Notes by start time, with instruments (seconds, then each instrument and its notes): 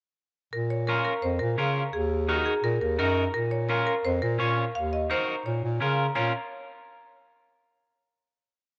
0.53 bass clarinet A#2, marimba A#4
0.70 marimba C#5
0.87 clean electric guitar C#4 F4 A#4, marimba A#4
1.05 marimba A#4
1.22 bass clarinet F2, marimba C5
1.39 bass clarinet A#2, marimba A#4
1.58 bass clarinet C#3, clean electric guitar C#4 F4 A#4
1.93 bass clarinet D#2, marimba G#4
2.28 clean electric guitar D#4 F#4 A#4, marimba F#4
2.46 marimba G#4
2.64 bass clarinet A#2, marimba A#4
2.81 bass clarinet D#2, marimba A#4
2.99 bass clarinet F#2, clean electric guitar D#4 F#4 A#4, marimba A#4
3.34 bass clarinet A#2, marimba A#4
3.51 marimba C#5
3.69 clean electric guitar C#4 F4 A#4, marimba A#4
3.87 marimba A#4
4.05 bass clarinet F2, marimba C5
4.22 bass clarinet A#2, marimba A#4
4.39 bass clarinet A#2, clean electric guitar C#4 F4 C#5
4.75 bass clarinet D#2, marimba F5
4.93 marimba D#5
5.10 clean electric guitar D#4 F#4 A#4, marimba C5
5.46 bass clarinet A#2, marimba C#5
5.63 bass clarinet A#2
5.80 bass clarinet C#3, clean electric guitar C#4 F4 A#4
6.15 bass clarinet A#2, clean electric guitar C#4 F4 A#4, marimba C#5